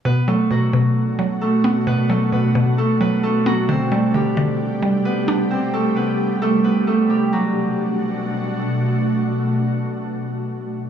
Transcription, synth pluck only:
X:1
M:4/4
L:1/8
Q:1/4=132
K:Bphr
V:1 name="Synth pluck" clef=bass
B,, F, B,, B,,2 F,2 B, | B,, F, B,, B,,2 F,2 B, | D, G, D, D,2 G,2 D- | D4 z4 |
z8 | z8 |]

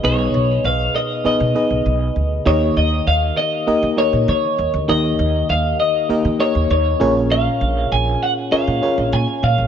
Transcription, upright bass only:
X:1
M:4/4
L:1/16
Q:1/4=99
K:Ebm
V:1 name="Upright bass" clef=bass
C,,2 C,,2 C,,2 z3 C, z C,, C,,2 =D,,2 | E,,2 E,,2 E,,2 z3 E, z B,, E, z E,, =D,, | E,,2 E,,2 E,,2 z3 E, z E,, E,,2 B,,,2- | B,,,2 B,,,2 B,,,2 z3 B,, z B,,, B,, z B,, =A,,, |]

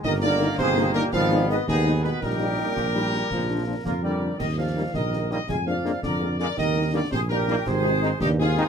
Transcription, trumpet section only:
X:1
M:6/8
L:1/8
Q:3/8=110
K:Eb
V:1 name="Trumpet section"
e d2 c2 B | f2 e A2 _c | B6- | B3 B d2 |
e f2 e2 e | a f2 d2 d | e2 d c B2 | c3 G A2 |]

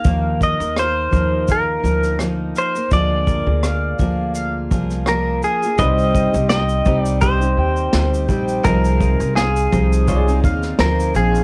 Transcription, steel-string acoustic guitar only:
X:1
M:4/4
L:1/16
Q:"Swing 16ths" 1/4=84
K:Cm
V:1 name="Steel-string acoustic guitar"
[E,F,B,EB]3 [B,EB]3 [F,B,EB]4 [F,B,EB]2 [F,B,EB]3 [B,EB] | [D,F,B,FA]3 [B,FA]3 [F,B,FA]4 [F,B,FA]2 [F,B,FA]3 [B,FA] | [C,G,CEG]3 [CEG]3 [G,CEG]3 [CEG]3 [G,CEG]2 [G,CEG]2 | [C,F,CEA]3 [CEA]3 [F,CEA]3 [CEA]3 [F,CEA]2 [F,CEA]2 |]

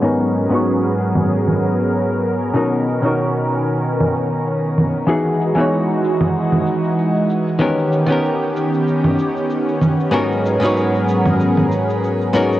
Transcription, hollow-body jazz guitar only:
X:1
M:4/4
L:1/16
Q:"Swing 16ths" 1/4=95
K:G#m
V:1 name="Hollow-body jazz guitar"
[G,,B,CDFA]3 [G,,B,CDFc]12- [G,,B,CDFc] | [B,,CDFA]3 [B,,CDFA]12- [B,,CDFA] | [E,B,DFG]3 [E,B,DFc]12- [E,B,DFc] | [D,B,C=GA]3 [D,B,CGA]12- [D,B,CGA] |
[G,,B,CDFA]3 [G,,B,CDFc]8- [G,,B,CDFc]3 [G,,B,CDFA]2 |]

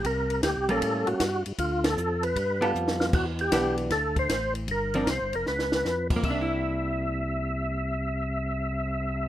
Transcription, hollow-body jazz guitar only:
X:1
M:4/4
L:1/8
Q:"Swing" 1/4=155
K:Cmix
V:1 name="Hollow-body jazz guitar"
z3 [G,B,_D]3 z2 | z4 z [G,=B,FA]3 | z2 [E,=B,DG]2 z4 | z [F,CD] z6 |
[B,DE]8- | [B,DE]8 |]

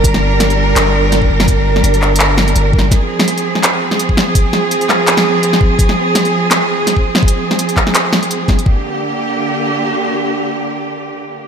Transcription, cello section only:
X:1
M:4/4
L:1/8
Q:"Swing 16ths" 1/4=167
K:Gphr
V:1 name="Cello section"
[G,DB]8- | [G,DB]8 | [F,CA]8- | [F,CA]8- |
[F,CA]8- | [F,CA]8 | [D,B,G]8- | [D,B,G]8 |]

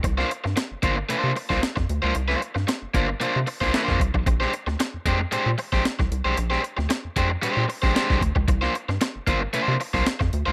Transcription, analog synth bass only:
X:1
M:4/4
L:1/16
Q:1/4=114
K:Cdor
V:1 name="Analog synth bass" clef=bass
C,,2 z G,, z G,,, G,,,2 C, C, z C,, z F,, D,, _D,, | C,,2 z G,, z G,,, G,,,2 C, C, z C,, z F,, C,, =B,,, | B,,,2 z D,, z F,, F,,2 B,, B,, z B,,, z C,, C,, =B,,, | B,,,2 z D,, z F,, F,,2 B,, B,, z B,,, z C,, D,, _D,, |
C,,2 z G,, z G,,, G,,,2 C, C, z C,, z F,, D,, _D,, |]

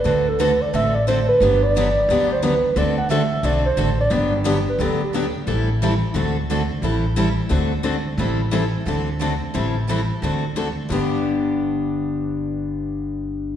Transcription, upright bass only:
X:1
M:4/4
L:1/8
Q:"Swing" 1/4=177
K:G
V:1 name="Upright bass" clef=bass
D,,4 A,,,4 | G,,,4 D,,4 | D,,4 B,,,2 A,,,2 | G,,,4 D,,4 |
A,,,4 D,,4 | A,,,4 D,,4 | A,,,4 D,,4 | A,,,4 D,,4 |
G,,,8- | G,,,8 |]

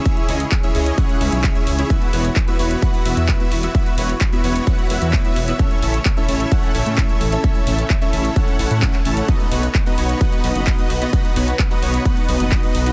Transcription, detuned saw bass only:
X:1
M:4/4
L:1/16
Q:1/4=130
K:E
V:1 name="Detuned saw bass" clef=bass
z2 C,, z3 C,, z3 C,, B,,, z2 C,, z | z2 E,,, z3 E,,, z3 E,,, E,, z2 E,,, z | z2 E,,, z3 E,,, z3 E,,, E,, z2 E,,, z | z2 A,,, z3 A,,, z3 A,,, A,, z2 A,,, z |
z2 A,,, z3 A,,, z3 A,,, A,, z2 A,,, z | z2 B,,, z3 B,,, z3 B,,, F,,, z2 B,,, z | z2 B,,, z3 B,,, z3 B,,, F,,, z2 B,,, z |]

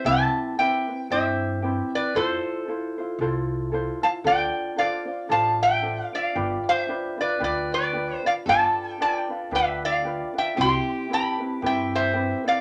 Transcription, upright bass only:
X:1
M:4/4
L:1/8
Q:"Swing" 1/4=114
K:C
V:1 name="Upright bass" clef=bass
C,, z3 G,,4 | F,, z3 C,,4 | D,, z3 A,,,4 | G,,, z3 D,,4 |
G,,, z3 D,,4 | C,, z3 G,,4 |]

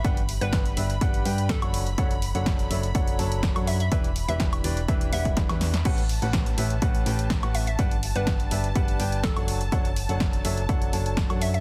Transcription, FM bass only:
X:1
M:4/4
L:1/16
Q:1/4=124
K:D
V:1 name="FM bass" clef=bass
G,,,3 G,,,3 G,,,2 G,,,2 G,,3 F,,,3 | F,,,3 F,,,3 F,,,2 F,,,2 F,,,3 F,,3 | E,,,3 E,,,3 E,,,2 E,,,2 E,,,3 E,,3 | A,,,3 A,,,3 A,,,2 A,,,2 A,,,3 A,,,3 |
G,,,3 G,,,3 G,,,2 G,,,2 G,,,3 F,,,3 | F,,,3 F,,,3 F,,,2 F,,,2 F,,,3 F,,3 |]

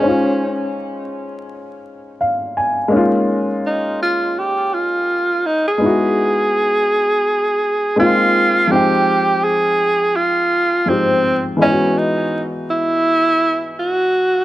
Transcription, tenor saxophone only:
X:1
M:4/4
L:1/16
Q:"Swing 16ths" 1/4=83
K:Fm
V:1 name="Tenor saxophone"
D4 z12 | z4 E2 F2 G2 F4 E A- | A12 F4 | G4 A4 F4 C4 |
D2 ^D3 z =E6 _G4 |]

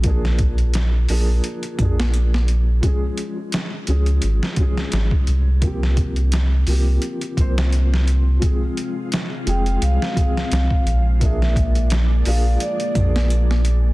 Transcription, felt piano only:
X:1
M:4/4
L:1/16
Q:"Swing 16ths" 1/4=86
K:Bbdor
V:1 name="Felt piano"
[F,B,=DA]6 [F,B,DA]4 [F,B,DA]6 | [F,A,DA]6 [F,A,DA]4 [F,A,DA]6 | [F,B,CG]6 [F,B,CG]4 [F,B,Cc] [CF] z4 | [F,A,CA]6 [F,A,CA]4 [F,A,CA]6 |
[F,B,=DA]6 [F,B,DA]4 [F,B,DA]6 |]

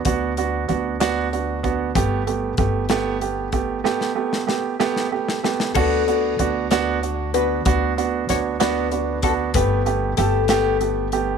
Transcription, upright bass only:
X:1
M:6/8
L:1/8
Q:3/8=63
K:D
V:1 name="Upright bass" clef=bass
D,,2 D,,4 | G,,,2 G,,,4 | z6 | D,,2 D,,4 |
D,,2 D,,4 | G,,,2 G,,,4 |]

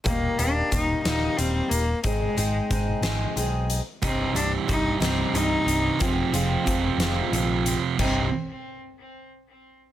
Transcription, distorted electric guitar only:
X:1
M:6/8
L:1/8
Q:3/8=61
K:Cm
V:1 name="Distorted electric guitar" clef=bass
z6 | z6 | [C,,G,,C,] [C,,G,,C,] [C,,G,,C,] [C,,G,,C,] [C,,G,,C,] [C,,G,,C,] | [F,,C,F,] [F,,C,F,] [F,,C,F,] [F,,C,F,] [F,,C,F,] [F,,C,F,] |
[C,,G,,C,] z4 z |]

